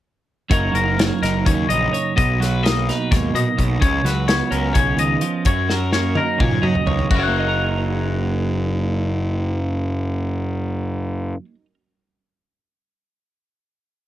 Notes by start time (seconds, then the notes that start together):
0.50 F#1 F#2 F#3 A#3 D#4 A#4 C#5, kick, closed hi-hat
0.72 F#1 F#3 A#4, closed hi-hat
0.97 A#3 C#5, snare, closed hi-hat
1.22 F#1 D#4 A#4, snare, closed hi-hat
1.45 D#2 C#3 C#5, kick, closed hi-hat
1.69 A#1 D#4 D#5, closed hi-hat
1.93 C#5, closed hi-hat
2.16 B1 B2 D#5, kick, closed hi-hat
2.40 F#3 B4, snare, closed hi-hat
2.63 A#3 D#5, snare, closed hi-hat
2.89 D#4 B4, snare, closed hi-hat
3.11 D#2 G#2 C#5, kick, snare, closed hi-hat
3.34 A#2 B2 D#5, closed hi-hat
3.57 B1 B2, kick, closed hi-hat
3.80 C#2 C#3 C#5, kick, closed hi-hat
4.04 C#2 F#3 B4, snare, closed hi-hat
4.28 B3 C#5, snare, closed hi-hat
4.51 C#2 C#4 A#4, closed hi-hat
4.74 B1 C#3 C#5, kick, closed hi-hat
4.97 C#2 D#3 D#5, closed hi-hat
5.21 F3, closed hi-hat
5.45 F#2 C#5, kick, closed hi-hat
5.69 F#3 A#4, snare
5.92 A#3 C#5, snare
6.15 D#4 A#4, high tom
6.38 A#2 C#3 C#5, kick, mid tom
6.51 mid tom
6.62 F#3 D#4 D#5, mid tom
6.75 floor tom
6.86 C#2 C#5, floor tom
6.99 floor tom
7.09 F#1 F#2 F#4, kick, crash
7.15 F#3 A#4
7.19 C#5 F#5
7.28 A#3
7.39 D#4
7.48 A#4